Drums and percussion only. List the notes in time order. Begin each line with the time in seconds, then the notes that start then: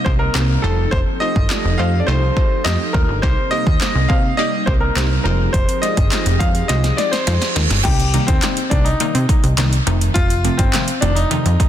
0.06 kick
0.35 snare, clap
0.93 kick
1.36 kick
1.50 snare, clap
2.37 kick
2.66 snare, clap
2.94 kick
3.23 kick
3.67 kick
3.81 snare, clap
4.10 kick
4.67 kick
4.97 snare, clap
5.54 kick, closed hi-hat
5.69 closed hi-hat
5.83 closed hi-hat
5.97 kick, closed hi-hat
6.12 snare, clap, closed hi-hat
6.26 closed hi-hat
6.40 kick, closed hi-hat
6.55 closed hi-hat
6.69 snare, closed hi-hat
6.84 snare, closed hi-hat
6.98 snare, closed hi-hat
7.13 snare, closed hi-hat
7.27 snare, closed hi-hat
7.42 snare, closed hi-hat
7.56 snare, closed hi-hat
7.70 snare, closed hi-hat
7.85 kick, closed hi-hat, crash
8.00 closed hi-hat
8.14 closed hi-hat
8.28 kick, closed hi-hat
8.42 snare, clap, closed hi-hat
8.57 closed hi-hat
8.71 kick, closed hi-hat
8.86 closed hi-hat
9.00 closed hi-hat
9.15 closed hi-hat
9.29 kick, closed hi-hat
9.44 closed hi-hat
9.58 snare, clap, closed hi-hat
9.73 closed hi-hat
9.87 closed hi-hat
10.01 closed hi-hat
10.16 kick, closed hi-hat
10.30 closed hi-hat
10.45 closed hi-hat
10.59 kick, closed hi-hat
10.73 snare, clap, closed hi-hat
10.88 closed hi-hat
11.02 closed hi-hat
11.17 closed hi-hat
11.31 closed hi-hat
11.46 closed hi-hat
11.60 kick, closed hi-hat